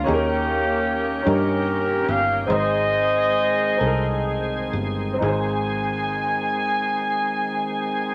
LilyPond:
<<
  \new Staff \with { instrumentName = "Horn section" } { \time 6/8 \key aes \major \tempo 4. = 44 << { g'4. bes'4 f''8 | ees''2~ ees''8 r8 | aes''2. | } \\ { <bes des'>4. <des' g'>4. | <aes' c''>2~ <aes' c''>8 r8 | r2. | } >> }
  \new Staff \with { instrumentName = "Upright piano" } { \time 6/8 \key aes \major <ees des' ees' g' aes' bes'>4. <des' ees' g' bes'>4. | <aes, c' ees' aes' c''>4. <c' ees' aes' a' bes'>4. | <aes,, c' ees' aes' c''>2. | }
  \new Staff \with { instrumentName = "Tonewheel organ" } { \time 6/8 \key aes \major <ees bes des' ges' g'>2. | <ees aes c' aes'>2. | <ees aes c' aes'>2. | }
  \new Staff \with { instrumentName = "Fingered electric bass" } { \clef bass \time 6/8 \key aes \major ees,4. g,4 g,,8 | aes,,4. c,4 g,,8 | aes,,2. | }
>>